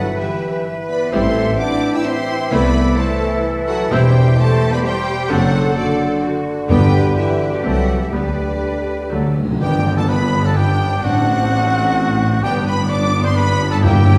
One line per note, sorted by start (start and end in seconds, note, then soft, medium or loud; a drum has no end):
0.00 0.11 G1 medium
0.00 2.47 E3 medium
0.00 0.18 F#3 medium
0.00 0.19 F#4 medium
0.00 0.21 A4 medium
0.00 0.63 B4 medium
0.00 1.08 B4 medium
0.00 0.18 F#5 loud
0.18 0.65 E3 medium
0.18 0.64 E4 medium
0.18 0.66 G4 medium
0.18 0.64 E5 medium
0.66 1.12 B4 medium
0.89 1.11 B3 medium
0.89 1.11 B4 medium
0.89 1.11 D5 medium
0.89 1.11 B5 loud
1.12 1.51 A1 medium
1.12 1.34 G3 medium
1.12 1.58 C4 loud
1.12 1.34 E4 medium
1.12 2.49 G4 medium
1.12 1.59 A4 medium
1.12 1.58 C5 medium
1.12 1.61 E5 medium
1.12 1.58 C6 loud
1.59 1.93 D4 loud
1.59 4.33 E4 medium
1.59 1.93 D5 loud
1.59 1.94 F#5 medium
1.59 1.93 D6 loud
1.94 2.05 E4 loud
1.94 2.05 E5 loud
1.94 1.99 G5 medium
1.94 2.06 E6 loud
2.04 2.50 C4 loud
2.04 2.52 C5 loud
2.04 2.51 E5 loud
2.04 2.51 C6 loud
2.51 2.90 C2 loud
2.51 4.99 E3 loud
2.51 2.73 A3 medium
2.51 2.98 B3 loud
2.51 2.73 E4 medium
2.51 3.88 A4 medium
2.51 2.97 B4 loud
2.51 3.00 D5 loud
2.51 2.98 B5 loud
2.98 3.45 A3 loud
2.98 3.44 A4 medium
2.98 3.45 C5 medium
2.98 3.44 A5 loud
3.67 3.79 F#3 loud
3.67 3.89 F#4 loud
3.67 3.94 A4 loud
3.67 3.89 F#5 loud
3.91 4.30 E1 loud
3.91 4.37 G3 loud
3.91 4.13 C4 loud
3.91 4.13 E4 medium
3.91 4.36 G4 medium
3.91 6.38 C5 medium
3.91 4.37 C5 loud
3.91 4.37 G5 loud
4.37 4.72 A3 loud
4.37 5.28 G4 loud
4.37 4.72 A4 loud
4.37 4.72 C5 loud
4.37 4.72 A5 loud
4.71 4.83 B3 loud
4.71 4.84 B4 loud
4.71 4.84 D5 loud
4.71 4.78 B5 loud
4.83 5.30 G3 loud
4.83 5.29 G4 loud
4.83 5.32 C5 loud
4.83 5.30 G5 loud
5.29 5.69 F#1 loud
5.29 5.69 F#1 medium
5.29 7.66 D3 medium
5.29 5.75 F#3 loud
5.29 5.51 C4 medium
5.29 5.51 D4 medium
5.29 5.76 F#4 loud
5.29 5.78 A4 loud
5.29 6.23 A4 loud
5.29 5.77 F#5 loud
5.76 6.22 D3 medium
5.76 6.23 D4 medium
5.76 6.23 F#4 medium
5.76 6.22 D5 loud
6.23 6.69 F#4 medium
6.69 7.08 G1 medium
6.69 7.36 G2 loud
6.69 7.12 G3 loud
6.69 6.90 B3 medium
6.69 6.90 D4 medium
6.69 7.13 G4 loud
6.69 7.17 B4 loud
6.69 7.65 B4 medium
6.69 7.15 B4 medium
6.69 7.13 G5 loud
7.15 7.52 E3 medium
7.15 7.51 E4 medium
7.15 7.51 G4 medium
7.15 8.13 G4 medium
7.15 7.51 E5 medium
7.51 7.64 D3 medium
7.51 7.64 D4 medium
7.51 7.65 F#4 medium
7.51 7.65 D5 medium
7.63 8.04 C2 medium
7.63 8.05 C2 medium
7.63 8.13 E3 medium
7.63 8.00 F#3 medium
7.63 7.86 A3 medium
7.63 7.86 C4 medium
7.63 8.00 F#4 medium
7.63 8.00 A4 medium
7.63 8.12 A4 medium
7.63 8.00 F#5 loud
8.00 8.12 E3 medium
8.00 8.06 E4 medium
8.00 8.06 G4 medium
8.00 8.14 E5 medium
8.12 8.54 D2 medium
8.12 9.37 D3 medium
8.12 8.35 G3 medium
8.12 9.11 G3 medium
8.12 8.35 B3 medium
8.12 9.35 D4 medium
8.12 9.34 G4 medium
8.12 9.37 B4 medium
8.12 9.14 B4 medium
8.12 9.34 D5 medium
9.12 9.53 D2 medium
9.12 9.19 D3 soft
9.12 9.35 F#3 medium
9.12 9.37 F#3 medium
9.12 9.35 A3 medium
9.12 9.37 A4 medium
9.20 9.27 D3 soft
9.28 9.34 D3 medium
9.36 9.42 D3 medium
9.43 9.50 D3 medium
9.51 9.58 D3 loud
9.60 11.00 G1 medium
9.60 11.00 G1 loud
9.60 11.00 G2 medium
9.60 11.00 B3 medium
9.60 9.78 B3 medium
9.60 12.40 D4 medium
9.60 9.78 D4 medium
9.60 9.95 G4 medium
9.60 9.99 G5 loud
9.60 9.95 G5 loud
9.60 tam-tam medium
9.97 10.10 A4 medium
9.97 10.02 A5 medium
9.97 10.09 A5 medium
9.97 10.09 A5 loud
10.08 10.47 B4 loud
10.08 10.44 B5 loud
10.08 10.47 B5 loud
10.45 10.58 A4 medium
10.45 10.58 A5 medium
10.45 10.57 A5 medium
10.45 10.58 A5 loud
10.56 11.05 G4 loud
10.56 11.03 G5 loud
11.03 12.41 A1 medium
11.03 12.41 A2 medium
11.03 11.20 C4 medium
11.03 12.40 C4 medium
11.03 11.20 D4 medium
11.03 12.44 F#4 loud
11.03 12.40 F#5 loud
11.03 12.43 F#5 loud
11.03 12.41 F#5 loud
12.42 14.18 G1 loud
12.42 14.18 G2 loud
12.42 12.59 B3 loud
12.42 13.79 B3 loud
12.42 12.59 D4 medium
12.42 13.79 D4 medium
12.42 12.66 G4 loud
12.42 12.48 G5 loud
12.42 12.66 G5 loud
12.42 12.52 G5 loud
12.66 12.77 B4 loud
12.66 12.91 B5 loud
12.66 12.89 B5 loud
12.66 12.90 B5 loud
12.90 13.24 D5 loud
12.90 13.24 D6 loud
12.90 13.25 D6 loud
13.23 13.30 C5 loud
13.23 13.36 C6 loud
13.23 13.30 C6 loud
13.23 13.31 C6 loud
13.35 13.73 B4 loud
13.35 13.71 B5 loud
13.71 13.85 A4 loud
13.71 13.77 A5 loud
13.71 13.76 A5 loud
13.71 13.84 A5 loud
13.82 14.18 G2 loud
13.82 13.99 A#3 loud
13.82 14.18 A#3 loud
13.82 13.99 E4 loud
13.82 14.18 E4 loud
13.82 14.18 G4 loud
13.82 14.18 G5 loud